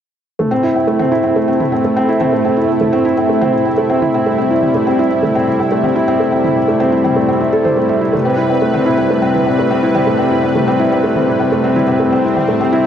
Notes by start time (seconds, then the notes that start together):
0.39 C3 A3 E4, mid tom
0.51 C4
0.63 E4
0.75 C4
0.87 A3
0.99 C4, mid tom
1.12 E4
1.24 C4
1.36 A3
1.48 C4
1.60 E4, mid tom
1.72 C4
1.84 A3
1.97 C4
2.09 E4
2.21 C4, mid tom
2.33 A3
2.45 C4
2.57 E4
2.69 C4
2.81 A3, mid tom
2.93 C4
3.05 E4
3.17 C4
3.29 A3
3.41 C4, mid tom
3.53 E4
3.65 C4
3.78 A3
3.90 C4
4.02 E4, mid tom
4.14 C4
4.26 G3 A3
4.38 C4
4.51 E4
4.63 C4, mid tom
4.75 A3
4.87 C4
4.99 E4
5.11 C4
5.23 A3, mid tom
5.35 C4
5.48 E4
5.60 C4
5.72 A3
5.83 C4, mid tom
5.96 E4
6.08 C4
6.20 A3
6.32 C4
6.44 E4, mid tom
6.56 C4
6.68 A3
6.80 C4
6.92 E4
7.04 C4, mid tom
7.16 A3
7.29 C4
7.41 E4
7.53 A4
7.65 C5, mid tom
7.77 A3
7.89 E5
8.01 E4
8.13 A3 B4, mid tom
8.25 C4
8.37 E4
8.49 C4
8.62 A3
8.74 C4, mid tom
8.86 E4
8.98 C4
9.10 A3
9.22 C4
9.34 E4, mid tom
9.47 C4
9.59 A3
9.71 C4
9.83 E4
9.95 C4, mid tom
10.07 A3
10.19 C4
10.31 E4
10.43 C4
10.55 A3, mid tom
10.68 C4
10.79 E4
10.92 C4
11.04 A3
11.16 C4, mid tom
11.28 E4
11.40 C4
11.52 A3
11.64 C4
11.76 E4, mid tom
11.88 C4
12.00 A3 C4
12.12 C4
12.24 E4
12.36 C4, mid tom
12.48 A3
12.61 C4
12.73 E4